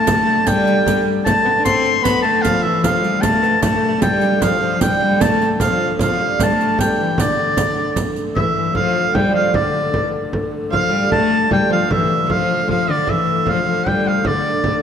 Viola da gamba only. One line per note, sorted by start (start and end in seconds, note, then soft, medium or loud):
0.00 0.47 A3 medium
0.47 0.84 G3 medium
0.86 1.05 G3 medium
1.25 1.35 A3 medium
1.44 1.50 B3 medium
1.58 1.65 D4 medium
1.64 2.03 C4 loud
2.04 2.26 B3 medium
2.24 2.46 A3 medium
2.44 2.66 F3 medium
2.64 2.85 E3 medium
2.83 3.04 F3 medium
3.02 3.23 G3 medium
3.21 3.61 A3 medium
3.61 4.02 A3 medium
4.00 4.42 G3 medium
4.41 4.59 F3 medium
4.60 4.82 F3 medium
4.80 5.00 G3 medium
5.01 5.22 G3 medium
5.21 5.50 A3 medium
5.60 5.96 F3 medium
6.00 6.36 F3 medium
6.39 6.47 A3 medium
6.45 6.53 G3 medium
6.52 6.80 A3 medium
6.79 6.98 G3 medium
6.98 7.19 E3 medium
7.18 7.96 D3 medium
8.36 8.54 E3 medium
8.55 8.73 E3 medium
8.75 9.11 F3 medium
9.13 9.34 G3 medium
9.32 9.53 F3 medium
9.52 10.12 D3 medium
10.71 10.91 F3 medium
10.90 11.10 G3 medium
11.11 11.47 A3 medium
11.51 11.69 G3 medium
11.70 11.88 F3 medium
11.89 12.26 E3 medium
12.30 12.66 F3 medium
12.69 12.90 F3 medium
12.89 13.10 D3 medium
13.08 13.47 E3 medium
13.47 13.65 F3 medium
13.67 13.88 F3 medium
13.87 14.24 G3 medium
14.25 14.61 D3 medium
14.64 14.82 D3 medium